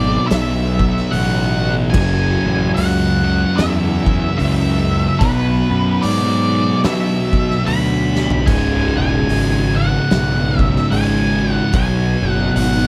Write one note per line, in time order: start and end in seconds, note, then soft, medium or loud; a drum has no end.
0.00 0.16 G#1 medium
0.00 1.10 B2 medium
0.00 1.91 B2 medium
0.00 1.11 F#3 medium
0.00 1.96 F#3 loud
0.00 1.10 B3 medium
0.00 1.93 B3 medium
0.00 0.27 D5 medium
0.27 0.98 B1 loud
0.27 1.13 E5 medium
0.27 open hi-hat medium
0.31 snare loud
0.79 kick medium
0.97 snare soft
1.11 1.96 A1 medium
1.11 1.91 B2 medium
1.11 1.95 F#3 medium
1.11 1.93 B3 medium
1.11 1.73 F#5 loud
1.11 open hi-hat medium
1.90 3.21 F#2 medium
1.90 2.70 G#5 loud
1.90 crash loud
1.94 2.35 F#1 loud
1.94 3.22 C#3 loud
1.94 3.23 F#3 loud
1.94 kick loud
2.45 2.71 A1 loud
2.74 3.44 C#2 loud
2.74 3.59 F#5 medium
2.74 open hi-hat medium
3.23 4.36 F#2 medium
3.23 4.37 C#3 medium
3.23 4.37 F#3 medium
3.56 4.26 E2 medium
3.56 4.37 E5 loud
3.56 snare loud
3.56 open hi-hat medium
4.06 kick loud
4.37 5.08 C#2 medium
4.37 5.18 F#2 medium
4.37 5.19 C#3 medium
4.37 5.19 F#3 medium
4.37 5.23 E5 medium
4.37 open hi-hat medium
5.18 5.61 B1 loud
5.18 6.47 B2 loud
5.18 6.48 F#3 loud
5.18 6.48 B3 loud
5.18 6.04 B4 loud
5.18 kick loud
5.18 open hi-hat medium
5.70 5.97 F#2 medium
6.02 6.71 G#2 loud
6.02 6.80 D5 medium
6.02 open hi-hat medium
6.49 7.63 B2 medium
6.49 7.64 F#3 medium
6.49 7.63 B3 medium
6.84 7.52 B2 loud
6.84 7.69 E5 loud
6.84 snare loud
6.84 open hi-hat medium
7.33 kick loud
7.51 snare soft
7.64 8.34 D2 medium
7.64 8.44 B2 medium
7.64 8.45 F#3 medium
7.64 8.45 B3 medium
7.64 8.50 B5 loud
7.64 open hi-hat medium
8.16 snare medium
8.30 floor tom loud
8.45 8.88 C#1 loud
8.45 9.74 C#2 loud
8.45 9.74 G#2 loud
8.45 9.74 C#3 loud
8.45 8.96 G#5 loud
8.45 kick loud
8.45 open hi-hat medium
8.45 crash loud
8.97 9.24 E1 loud
8.97 9.76 G#5 medium
9.29 9.97 G#1 medium
9.29 open hi-hat medium
9.76 10.89 C#2 medium
9.76 10.90 G#2 medium
9.76 10.89 C#3 medium
9.76 10.57 F#5 medium
10.11 10.78 B1 medium
10.11 snare loud
10.11 open hi-hat medium
10.57 10.91 E5 medium
10.57 kick medium
10.76 snare soft
10.91 11.59 G#1 loud
10.91 11.71 C#2 medium
10.91 11.72 G#2 medium
10.91 11.72 C#3 loud
10.91 11.52 G#5 loud
10.91 open hi-hat medium
11.52 11.73 F#5 loud
11.73 12.14 B1 loud
11.73 12.87 B2 loud
11.73 12.87 F#3 loud
11.73 12.87 B3 loud
11.73 12.30 G#5 loud
11.73 kick loud
11.73 open hi-hat medium
12.22 12.49 F#1 loud
12.30 12.51 F#5 loud
12.55 12.87 G#1 loud
12.55 12.87 F#5 medium
12.55 open hi-hat medium